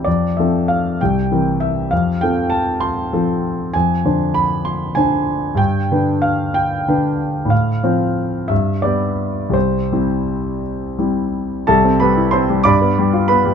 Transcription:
<<
  \new Staff \with { instrumentName = "Grand piano" } { \time 6/8 \key c \major \tempo 4. = 63 d''8 e''8 f''8 g''4 e''8 | f''8 g''8 a''8 c'''4. | aes''4 b''8 c'''8 aes''4 | g''4 f''8 g''4. |
f''4. e''8 d''4 | c''4. r4. | <a' e'' a''>8 <b' b''>8 <c'' c'''>8 <d'' b'' d'''>4 <b' b''>8 | }
  \new Staff \with { instrumentName = "Grand piano" } { \time 6/8 \key c \major f,8 <f c' a'>4 c,8 <e c' bes'>4 | f,8 <f c' a'>4. <f c' a'>4 | f,8 <d d' c''>4. <d d' c''>4 | g,8 <d d' b'>4. <d d' b'>4 |
a,8 <f c' c''>4 g,8 <g b g'>4 | c,8 <g c' e'>4. <g c' e'>4 | c,16 c'16 g16 e'16 c'16 g16 g,16 b16 g16 f'16 b16 g16 | }
>>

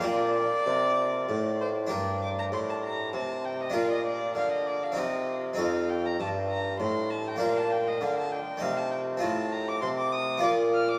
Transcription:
<<
  \new Staff \with { instrumentName = "Violin" } { \time 3/4 \key bes \major \tempo 4 = 98 d''2~ d''8 c''8 | \key g \minor d''8 d'''16 bes''16 c'''16 a''16 bes''8 a''8 g''16 ees''16 | f''16 ees''16 d''8 f''16 ees''16 d''16 f''16 ees''8 r8 | f''8 g''16 bes''16 a''8 bes''8 c'''8 a''16 g''16 |
f''16 a''16 g''16 ees''16 f''16 a''16 g''8 f''16 a''16 g''8 | \key f \mixolydian a''8 bes''16 d'''16 c'''16 d'''16 ees'''8 d'''8 f'''16 d'''16 | }
  \new Staff \with { instrumentName = "Harpsichord" } { \time 3/4 \key bes \major <bes d' bes'>2. | \key g \minor <d' g' bes'>2. | <d' f' bes'>2 <c' ees' g'>4 | <c' ees' a'>2. |
<bes d' bes'>2 <a ees' ees''>4 | \key f \mixolydian <c' f' ees''>2 <bes f' d''>4 | }
  \new Staff \with { instrumentName = "Harpsichord" } { \clef bass \time 3/4 \key bes \major bes,8 r8 c4 a,4 | \key g \minor g,4 a,4 c4 | bes,4 d4 c4 | f,4 g,4 a,4 |
bes,4 d8 r8 c4 | \key f \mixolydian a,4 c4 bes,4 | }
  \new Staff \with { instrumentName = "Bassoon" } { \clef bass \time 3/4 \key bes \major bes,8 r8 c4 a,4 | \key g \minor g,4 a,4 c4 | bes,4 d4 c4 | f,4 g,4 a,4 |
bes,4 d8 r8 c4 | \key f \mixolydian a,4 c4 bes,4 | }
>>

